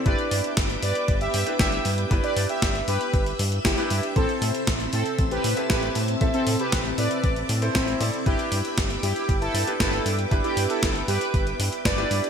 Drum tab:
HH |xxoxxxoxxxoxxxox|xxoxxxoxxxoxxxox|xxoxxxoxxxoxxxox|xxoxxxoxxxoxxxox|
SD |----o-------o---|----o-------o---|----o-------o---|----o-------o---|
BD |o---o---o---o---|o---o---o---o---|o---o---o---o---|o---o---o---o---|

HH |xxoxxxoxxxoxxxox|xxoxxxoxxxoxxxox|
SD |----o-------o---|----o-------o---|
BD |o---o---o---o---|o---o---o---o---|